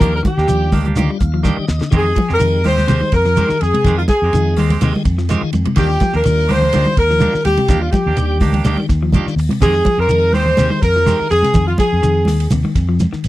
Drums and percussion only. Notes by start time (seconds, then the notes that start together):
0.00 kick, closed hi-hat, low conga, shekere
0.25 kick, closed hi-hat, high conga, shekere
0.38 snare
0.48 closed hi-hat, shekere
0.72 kick, open hi-hat, high conga, shekere
0.85 closed hi-hat, high conga
0.96 closed hi-hat, high conga, shekere
1.20 kick, closed hi-hat, shekere
1.44 kick, snare, high conga, low conga, shekere
1.68 snare, shekere
1.82 snare
1.92 kick, ride bell, low conga, shekere
2.16 kick, ride bell, high conga, shekere
2.29 snare
2.40 ride bell, shekere
2.64 open hi-hat, high conga, shekere
2.78 snare, high conga
2.88 ride bell, high conga, shekere
3.03 high conga
3.12 kick, ride bell, shekere
3.25 snare
3.37 ride bell, high conga, low conga, shekere
3.50 snare
3.61 ride bell, shekere
3.74 ride bell, high conga
3.84 kick, ride bell, low conga, shekere
4.08 kick, snare, ride bell, high conga, shekere
4.33 ride bell, shekere
4.56 open hi-hat, high conga, shekere
4.70 ride bell, high conga, low conga
4.81 ride bell, high conga, shekere
4.96 high conga
5.05 kick, ride bell, shekere
5.18 snare
5.29 snare, ride bell, high conga, low conga, shekere
5.53 ride bell, high conga, shekere
5.65 ride bell, high conga
5.76 kick, ride bell, low conga, shekere
6.00 kick, snare, ride bell, high conga, shekere
6.13 snare
6.24 ride bell, shekere
6.48 open hi-hat, high conga, shekere
6.62 low conga
6.73 ride bell, high conga, shekere
6.86 high conga
6.97 kick, ride bell, shekere
7.11 snare
7.20 ride bell, high conga, low conga, shekere
7.35 snare
7.45 ride bell, high conga, shekere
7.57 ride bell, high conga
7.68 kick, ride bell, low conga, shekere
7.92 kick, ride bell, high conga, shekere
8.17 ride bell, shekere
8.40 kick, open hi-hat, high conga, shekere
8.53 ride bell, high conga, low conga
8.65 ride bell, high conga, shekere
8.77 high conga
8.89 kick, snare, ride bell, shekere
9.12 kick, ride bell, high conga, low conga, shekere
9.27 snare
9.38 open hi-hat, shekere
9.49 ride bell, high conga
9.61 kick, ride bell, low conga, shekere
9.85 kick, ride bell, high conga, shekere
10.09 ride bell, shekere
10.33 open hi-hat, high conga, shekere
10.46 low conga
10.57 ride bell, high conga, shekere
10.70 high conga
10.83 kick, snare, ride bell, shekere
10.97 snare
11.06 snare, ride bell, high conga, low conga, shekere
11.30 ride bell, shekere
11.43 snare, ride bell, high conga
11.54 kick, ride bell, low conga, shekere
11.78 kick, snare, ride bell, high conga, shekere
12.03 ride bell, shekere
12.25 snare, open hi-hat, high conga, shekere
12.40 ride bell
12.51 ride bell, high conga, shekere
12.64 high conga
12.75 kick, snare, ride bell, shekere
12.99 snare, ride bell, high conga, low conga, shekere
13.13 snare
13.24 ride bell, shekere